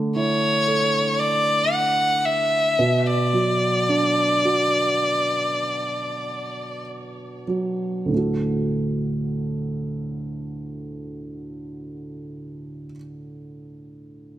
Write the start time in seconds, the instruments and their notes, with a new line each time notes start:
Already playing: upright piano D3 A3
0.16 upright piano E4, violin C#5
0.67 upright piano A4
1.19 violin D5
1.72 violin F#5
2.25 violin E5
2.79 upright piano B2
3.07 violin D5
3.33 upright piano F#3
3.89 upright piano D4
4.45 upright piano F#4
7.47 upright piano F#3
8.06 upright piano D2 A2
8.11 upright piano D3 A3
8.17 upright piano F#4 A4